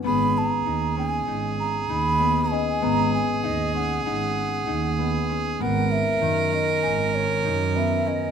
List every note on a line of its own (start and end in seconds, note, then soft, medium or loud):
0.00 0.96 C#4 medium
0.00 0.65 D#4 medium
0.00 0.31 F#5 medium
0.04 0.55 G#1 loud
0.04 2.19 B3 medium
0.04 5.63 G#4 medium
0.04 0.39 B5 loud
0.38 0.49 A5 medium
0.49 0.98 A#5 medium
0.66 1.16 D#2 medium
0.66 1.27 D#4 medium
0.96 2.50 C#4 medium
0.96 1.55 G#5 medium
1.27 1.78 G#1 medium
1.27 1.89 D#4 medium
1.60 1.92 A#5 medium
1.89 2.65 D#2 medium
1.89 3.43 D#4 medium
1.89 2.54 B5 loud
2.20 2.82 B3 medium
2.51 3.74 C#4 medium
2.51 4.67 D#5 medium
2.51 2.85 G#5 medium
2.82 3.33 G#1 loud
2.82 4.98 B3 medium
2.82 3.14 A#5 loud
3.14 3.46 G#5 medium
3.44 3.95 D#2 medium
3.44 4.05 D#4 medium
3.44 3.75 D#5 medium
3.75 5.29 C#4 medium
3.75 4.04 F#5 medium
4.06 4.56 G#1 medium
4.06 4.67 D#4 medium
4.06 5.25 F#5 medium
4.67 5.43 D#2 medium
4.67 6.83 D#4 medium
4.99 5.60 B3 medium
5.29 6.52 C#4 medium
5.60 6.10 G#1 loud
5.60 7.75 B3 medium
5.60 8.31 A#4 loud
5.60 5.93 F#5 medium
5.92 6.53 E5 medium
6.21 6.72 F#2 medium
6.21 8.31 D#3 medium
6.52 8.06 C#4 medium
6.52 7.16 D#5 medium
6.83 7.34 G#1 medium
6.83 7.44 D#4 medium
6.83 8.31 G#5 medium
7.15 7.77 C#5 medium
7.45 8.21 F#2 loud
7.45 8.31 D#4 medium
7.76 8.31 B3 medium
7.76 8.09 E5 medium
8.06 8.31 C#4 medium
8.06 8.31 D#5 medium